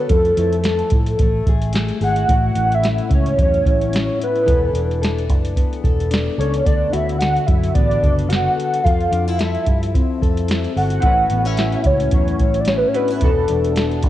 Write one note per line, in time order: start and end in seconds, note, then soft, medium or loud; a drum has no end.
0.00 0.16 B3 medium
0.00 0.15 F#4 medium
0.00 0.10 A4 medium
0.00 0.11 B4 medium
0.09 0.32 F2 loud
0.09 1.25 F3 medium
0.09 1.73 A4 medium
0.09 0.64 A4 medium
0.09 kick loud
0.09 closed hi-hat medium
0.25 closed hi-hat soft
0.37 0.81 F2 medium
0.37 0.93 E4 medium
0.37 closed hi-hat medium
0.52 closed hi-hat soft
0.64 1.49 A4 medium
0.64 snare medium
0.64 closed hi-hat medium
0.79 closed hi-hat soft
0.90 1.14 A2 medium
0.90 1.74 E4 medium
0.90 kick medium
0.90 closed hi-hat medium
1.06 closed hi-hat medium
1.19 1.41 A1 loud
1.19 3.36 A3 medium
1.19 kick medium
1.19 closed hi-hat medium
1.46 1.90 A1 medium
1.46 2.00 G#4 medium
1.46 kick medium
1.46 closed hi-hat medium
1.62 closed hi-hat soft
1.73 2.28 E4 medium
1.73 snare loud
1.73 closed hi-hat medium
1.88 closed hi-hat soft
2.01 2.23 G#1 medium
2.01 2.35 G#4 medium
2.01 2.76 F#5 loud
2.01 open hi-hat soft
2.16 closed hi-hat medium
2.28 2.51 A1 medium
2.28 4.47 A2 medium
2.28 2.82 E4 medium
2.28 kick loud
2.28 closed hi-hat loud
2.55 2.99 A1 medium
2.55 3.08 C#4 medium
2.55 closed hi-hat medium
2.72 3.12 E5 loud
2.72 closed hi-hat soft
2.83 3.65 E4 medium
2.83 snare medium
2.83 closed hi-hat medium
2.98 closed hi-hat soft
3.09 3.33 C#2 medium
3.09 3.92 C#4 medium
3.09 kick medium
3.09 closed hi-hat medium
3.14 3.38 C#5 medium
3.26 closed hi-hat medium
3.37 3.60 E2 medium
3.37 4.46 F#3 medium
3.37 kick medium
3.37 closed hi-hat medium
3.42 4.18 C#5 loud
3.54 closed hi-hat soft
3.65 4.09 A1 medium
3.65 4.19 E4 medium
3.65 kick medium
3.65 closed hi-hat medium
3.82 closed hi-hat soft
3.93 4.54 C#4 medium
3.93 snare loud
3.93 closed hi-hat medium
4.19 4.73 E4 medium
4.19 closed hi-hat medium
4.23 5.00 B4 medium
4.36 closed hi-hat medium
4.46 4.69 E1 medium
4.46 6.65 E3 medium
4.46 5.01 A4 medium
4.46 kick loud
4.46 closed hi-hat loud
4.73 5.29 E1 medium
4.73 5.29 D4 medium
4.73 closed hi-hat medium
4.91 closed hi-hat soft
5.02 5.83 A4 medium
5.02 snare loud
5.02 closed hi-hat medium
5.18 closed hi-hat soft
5.29 5.63 F#1 medium
5.29 6.10 D4 medium
5.29 kick medium
5.29 closed hi-hat medium
5.45 closed hi-hat medium
5.56 7.23 B3 medium
5.56 kick medium
5.56 closed hi-hat medium
5.73 closed hi-hat soft
5.84 6.28 E1 loud
5.84 6.38 A4 medium
5.84 kick medium
5.84 closed hi-hat medium
6.00 closed hi-hat soft
6.11 6.93 D4 medium
6.11 snare loud
6.11 closed hi-hat medium
6.38 6.60 C#2 medium
6.38 6.66 A4 medium
6.38 6.64 C#5 medium
6.38 closed hi-hat medium
6.54 closed hi-hat medium
6.65 6.88 D2 medium
6.65 8.84 D3 medium
6.65 7.20 A4 medium
6.65 6.92 D5 loud
6.65 kick loud
6.65 closed hi-hat medium
6.93 7.37 D2 medium
6.93 7.46 F#4 medium
6.93 7.18 E5 medium
6.93 closed hi-hat medium
7.09 closed hi-hat soft
7.19 8.02 A4 medium
7.19 7.48 F#5 loud
7.19 snare loud
7.19 closed hi-hat medium
7.36 closed hi-hat soft
7.46 7.70 F#2 medium
7.46 8.28 F#4 medium
7.46 7.74 E5 loud
7.46 kick medium
7.46 closed hi-hat medium
7.64 closed hi-hat soft
7.75 7.97 A1 medium
7.75 8.90 B3 medium
7.75 8.30 D5 loud
7.75 kick medium
7.75 closed hi-hat medium
7.91 closed hi-hat soft
8.03 8.46 F#1 medium
8.03 8.56 A4 medium
8.03 kick medium
8.03 closed hi-hat medium
8.19 closed hi-hat soft
8.29 8.91 F#4 medium
8.29 8.83 F#5 loud
8.29 closed hi-hat medium
8.33 snare loud
8.56 8.84 A4 medium
8.56 closed hi-hat medium
8.74 closed hi-hat medium
8.84 9.07 F2 loud
8.84 11.03 F3 medium
8.84 9.40 A4 medium
8.84 9.40 F5 loud
8.84 kick loud
8.84 closed hi-hat medium
9.00 closed hi-hat soft
9.11 9.56 F2 medium
9.11 9.28 D4 medium
9.11 closed hi-hat medium
9.28 9.67 E4 soft
9.28 closed hi-hat soft
9.38 10.22 A4 medium
9.38 10.21 E5 medium
9.38 snare loud
9.38 closed hi-hat medium
9.55 closed hi-hat soft
9.67 10.01 G2 medium
9.67 10.49 E4 medium
9.67 kick medium
9.67 closed hi-hat medium
9.83 closed hi-hat medium
9.95 11.10 C4 medium
9.95 kick medium
9.95 closed hi-hat medium
10.22 10.65 F2 loud
10.22 10.76 A4 medium
10.22 kick medium
10.22 closed hi-hat medium
10.37 closed hi-hat soft
10.48 11.04 E4 medium
10.48 snare loud
10.48 closed hi-hat medium
10.64 closed hi-hat soft
10.76 10.98 G1 medium
10.76 11.35 A4 medium
10.76 11.48 F#5 loud
10.76 open hi-hat soft
10.90 closed hi-hat medium
11.00 11.25 A1 medium
11.00 13.22 A2 medium
11.00 11.09 C4 soft
11.00 12.90 E4 medium
11.00 11.58 E4 medium
11.00 12.91 F#4 medium
11.00 kick loud
11.00 closed hi-hat medium
11.06 12.92 C#4 medium
11.06 12.92 B4 medium
11.30 11.75 A1 medium
11.30 11.46 B3 medium
11.30 closed hi-hat medium
11.45 11.84 C#4 soft
11.45 11.87 E5 loud
11.45 closed hi-hat soft
11.57 12.40 E4 medium
11.57 snare medium
11.57 closed hi-hat medium
11.72 closed hi-hat soft
11.84 12.07 C#2 medium
11.84 12.66 C#4 medium
11.84 12.13 C#5 loud
11.84 kick medium
11.84 closed hi-hat medium
12.00 closed hi-hat medium
12.11 12.34 E2 medium
12.11 13.22 F#3 medium
12.11 12.62 C#5 loud
12.11 kick medium
12.11 closed hi-hat medium
12.28 closed hi-hat soft
12.39 12.83 A1 medium
12.39 12.95 E4 medium
12.39 kick medium
12.39 closed hi-hat medium
12.54 closed hi-hat medium
12.60 12.69 D5 medium
12.65 13.28 C#4 medium
12.65 12.79 C#5 medium
12.65 snare loud
12.65 closed hi-hat medium
12.77 12.89 B4 medium
12.88 12.97 C#5 medium
12.93 13.21 C#4 soft
12.93 13.10 D4 medium
12.93 13.22 E4 soft
12.93 13.22 F#4 soft
12.93 13.77 B4 medium
12.93 13.23 B4 medium
12.93 closed hi-hat medium
13.08 13.28 E4 medium
13.08 closed hi-hat medium
13.20 13.43 E1 medium
13.20 14.09 E3 medium
13.20 14.09 B3 medium
13.20 14.09 D4 medium
13.20 14.09 F#4 medium
13.20 13.76 A4 medium
13.20 kick loud
13.20 closed hi-hat medium
13.25 14.09 A4 medium
13.48 14.03 E1 medium
13.48 14.04 D4 medium
13.48 closed hi-hat medium
13.64 closed hi-hat soft
13.76 14.09 A4 medium
13.76 snare loud
13.76 closed hi-hat medium
13.91 closed hi-hat soft
14.02 14.09 F#1 medium
14.02 14.09 D4 medium
14.02 kick medium
14.02 closed hi-hat medium